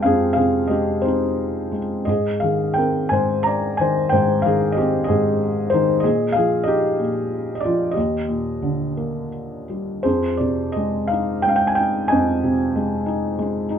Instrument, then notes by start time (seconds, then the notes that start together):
felt piano
Already playing: F2 C3 G#3 C4 G4 G#4 C5 D#5 F5 G5
0.03 F2 G#4 F5
0.33 C3 G#4 F5
0.67 G#3 G4 D#5
1.02 C4 D#4 C5
1.72 G#3
2.05 G#2 G#4 D#5
2.40 D#3 G#4 F5
2.74 C4 G5
2.78 A#4
3.09 G#2 C5 G#5
3.43 D5 A#5
3.77 D#3 C5 G#5
4.09 G#2 C5 G5
4.42 D#3 F5
4.46 G#4
4.72 D#5
4.77 C4 G4
5.04 G#4 D#5
5.09 G#2
5.70 D#3 C5
5.74 D#4
6.00 A#2 G#4 D#5
6.32 F3 G#4 F5
6.64 D#4 D#5
6.68 G4
7.00 A#2
7.55 D#5
7.60 F4 D5
7.65 F3
7.91 G4 D#5
7.96 D#2
8.28 A#2
8.62 D3
8.97 A#3
9.70 G3
10.03 F2 G#4 C5
10.37 C3 D5
10.72 D#5
10.76 G#3
11.07 D#4 F5
11.42 G#3 G5
11.49 F5
11.56 G5
11.67 G#5
11.75 D#4 G5
12.08 F2 D#5 G#5
12.44 C3
12.76 G#3
13.06 D#4
13.39 G#3
13.70 D#4